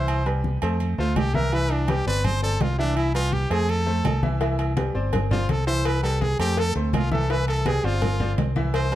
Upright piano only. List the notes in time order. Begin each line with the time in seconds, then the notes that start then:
Already playing: E3 E4 E5
0.26 G3 G4 B4
0.62 A3 A4 C5
0.98 A3 A4 C5
1.35 E3 E4 E5
1.53 E3 E4 E5
1.89 G3 G4 B4
2.07 C4 C5 D5
2.43 C4 C5 D5
2.79 E3 E4 E5
3.14 G3 G4 B4
3.50 A3 A4 C5
3.86 A3 A4 C5
4.23 E3 E4 E5
4.41 E3 E4 E5
4.77 G3 G4 B4
4.95 C4 C5 D5
5.31 C4 C5 D5
5.67 E3 E4 E5
6.03 G3 G4 B4
6.39 A3 A4 C5
6.75 A3 A4 C5
7.11 E3 E4 E5
7.30 E3 E4 E5
7.66 G3 G4 B4
7.84 C4 C5 D5
8.20 C4 C5 D5
8.56 E3 E4 E5
8.92 G3 G4